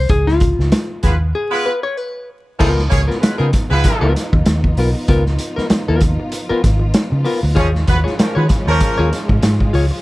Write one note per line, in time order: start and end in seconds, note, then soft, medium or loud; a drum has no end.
0.00 0.10 C5 medium
0.09 0.53 C#2 loud
0.09 0.28 G#4 loud
0.09 kick loud
0.09 closed hi-hat medium
0.27 1.17 F4 medium
0.27 snare soft
0.40 kick loud
0.40 closed hi-hat medium
0.59 0.71 C#2 medium
0.59 snare soft
0.72 snare loud
0.72 closed hi-hat medium
1.03 1.32 D#2 medium
1.03 1.14 G#3 medium
1.03 1.15 B3 medium
1.03 1.15 F4 medium
1.03 1.15 B4 loud
1.03 kick loud
1.03 snare soft
1.03 closed hi-hat medium
1.35 1.67 G#4 medium
1.51 1.71 G#3 loud
1.51 1.72 B3 loud
1.51 1.72 F4 loud
1.51 1.72 B4 loud
1.66 1.83 B4 medium
1.83 1.97 C#5 medium
1.97 2.29 B4 medium
2.59 2.88 C#2 loud
2.59 2.70 F3 loud
2.59 10.02 F3 medium
2.59 2.70 G#3 loud
2.59 2.81 B3 medium
2.59 7.54 B3 medium
2.59 2.70 D#4 loud
2.59 7.53 D#4 medium
2.59 2.81 F4 loud
2.59 10.02 F4 medium
2.59 2.70 G#4 loud
2.59 2.82 A#4 medium
2.59 kick loud
2.59 crash loud
2.78 snare soft
2.90 3.07 C#2 loud
2.90 3.01 A#3 medium
2.90 3.01 C#4 loud
2.90 3.01 G#4 medium
2.90 3.01 C#5 loud
2.90 muted hollow-body jazz guitar stroke soft
2.90 kick loud
2.90 closed hi-hat medium
3.07 3.17 B3 medium
3.07 3.17 F4 medium
3.07 3.17 A#4 medium
3.07 snare soft
3.21 3.35 G#3 medium
3.21 3.35 B3 medium
3.21 3.36 F4 medium
3.21 3.35 B4 medium
3.21 muted hollow-body jazz guitar stroke soft
3.21 muted fingered electric bass stroke soft
3.21 snare loud
3.21 closed hi-hat medium
3.38 3.52 C#3 loud
3.38 3.47 F3 medium
3.38 3.46 G#3 medium
3.38 3.51 B3 medium
3.38 3.46 D#4 medium
3.38 3.51 F4 medium
3.38 3.46 G#4 medium
3.38 3.50 A#4 medium
3.53 muted hollow-body jazz guitar stroke soft
3.53 kick loud
3.53 snare soft
3.53 closed hi-hat medium
3.70 3.83 C#2 medium
3.70 4.13 G#3 loud
3.70 4.13 B3 loud
3.70 4.13 F4 loud
3.70 4.13 B4 loud
3.70 muted hollow-body jazz guitar stroke medium
3.84 muted hollow-body jazz guitar stroke soft
3.84 kick loud
3.84 closed hi-hat medium
4.01 4.14 C#2 medium
4.01 4.13 B3 medium
4.01 4.14 F4 medium
4.01 4.14 A#4 medium
4.14 muted hollow-body jazz guitar stroke soft
4.14 snare soft
4.14 closed hi-hat medium
4.33 4.45 D#2 medium
4.33 muted hollow-body jazz guitar stroke soft
4.33 kick loud
4.46 4.74 D#2 medium
4.46 muted hollow-body jazz guitar stroke soft
4.46 snare loud
4.46 closed hi-hat medium
4.64 kick medium
4.77 4.93 B1 medium
4.77 4.89 B3 medium
4.77 4.89 F4 medium
4.77 4.90 A#4 medium
4.77 open hi-hat medium
4.95 muted hollow-body jazz guitar stroke soft
5.08 5.36 C#2 loud
5.08 5.23 B3 medium
5.08 5.23 F4 medium
5.08 5.23 A#4 loud
5.08 kick loud
5.08 closed hi-hat medium
5.26 snare soft
5.39 muted hollow-body jazz guitar stroke medium
5.39 closed hi-hat medium
5.56 5.66 B3 medium
5.56 5.66 F4 medium
5.56 5.65 A#4 medium
5.56 muted fingered electric bass stroke soft
5.56 snare soft
5.70 muted hollow-body jazz guitar stroke soft
5.70 muted fingered electric bass stroke soft
5.70 snare loud
5.70 closed hi-hat medium
5.88 6.16 D#2 medium
5.88 6.01 B3 medium
5.88 6.02 F4 medium
5.88 6.02 A#4 medium
6.01 muted hollow-body jazz guitar stroke soft
6.01 kick loud
6.01 closed hi-hat medium
6.20 muted hollow-body jazz guitar stroke soft
6.32 muted hollow-body jazz guitar stroke soft
6.32 closed hi-hat medium
6.49 6.62 B3 medium
6.49 6.61 F4 medium
6.49 6.61 A#4 loud
6.49 muted fingered electric bass stroke medium
6.63 6.91 G#1 medium
6.63 muted hollow-body jazz guitar stroke soft
6.63 kick medium
6.63 snare soft
6.63 closed hi-hat medium
6.79 muted hollow-body jazz guitar stroke soft
6.94 muted hollow-body jazz guitar stroke soft
6.94 snare loud
6.94 closed hi-hat loud
7.12 7.24 C#3 loud
7.12 muted hollow-body jazz guitar stroke soft
7.24 7.39 B3 medium
7.24 7.40 F4 medium
7.24 7.40 A#4 medium
7.24 open hi-hat medium
7.43 7.55 D2 loud
7.43 muted hollow-body jazz guitar stroke soft
7.55 7.84 D#2 loud
7.55 7.67 F3 medium
7.55 10.02 G#3 medium
7.55 7.67 G#3 loud
7.55 10.02 C#4 medium
7.55 7.67 C#4 loud
7.55 7.70 F4 loud
7.55 7.70 G#4 loud
7.55 7.67 G#4 loud
7.55 7.71 C#5 loud
7.55 kick loud
7.55 closed hi-hat medium
7.75 snare soft
7.87 8.03 D#2 loud
7.87 7.98 B3 medium
7.87 7.99 F#4 medium
7.87 7.98 B4 loud
7.87 muted hollow-body jazz guitar stroke soft
7.87 kick loud
7.87 closed hi-hat medium
8.04 8.14 F4 soft
8.04 8.14 G#4 medium
8.04 8.13 C#5 medium
8.04 snare soft
8.18 8.33 F3 medium
8.18 8.33 A#3 medium
8.18 8.33 C#4 medium
8.18 8.33 A#4 medium
8.18 muted hollow-body jazz guitar stroke soft
8.18 muted fingered electric bass stroke soft
8.18 snare loud
8.18 closed hi-hat medium
8.35 8.48 D#3 loud
8.35 8.45 B3 medium
8.35 8.47 F4 medium
8.35 8.44 F#4 medium
8.35 8.47 G#4 medium
8.35 8.45 B4 medium
8.35 8.47 C#5 medium
8.48 muted hollow-body jazz guitar stroke medium
8.48 kick loud
8.48 snare soft
8.48 closed hi-hat medium
8.66 8.79 D#2 loud
8.66 9.09 F3 loud
8.66 9.10 A#3 loud
8.66 9.10 C#4 loud
8.66 9.10 A#4 loud
8.66 muted hollow-body jazz guitar stroke medium
8.80 muted hollow-body jazz guitar stroke soft
8.80 kick loud
8.80 closed hi-hat medium
8.98 9.11 D#2 loud
8.98 9.10 F4 medium
8.98 9.10 G#4 medium
8.98 9.09 C#5 loud
9.12 muted hollow-body jazz guitar stroke soft
9.12 snare soft
9.12 closed hi-hat medium
9.28 9.41 G#2 medium
9.28 muted hollow-body jazz guitar stroke soft
9.28 kick loud
9.43 9.70 G#2 medium
9.43 muted hollow-body jazz guitar stroke medium
9.43 snare loud
9.43 closed hi-hat medium
9.60 kick medium
9.73 9.89 C#2 medium
9.73 9.85 F4 medium
9.73 9.85 G#4 medium
9.73 9.85 C#5 medium
9.73 open hi-hat medium
9.91 muted hollow-body jazz guitar stroke soft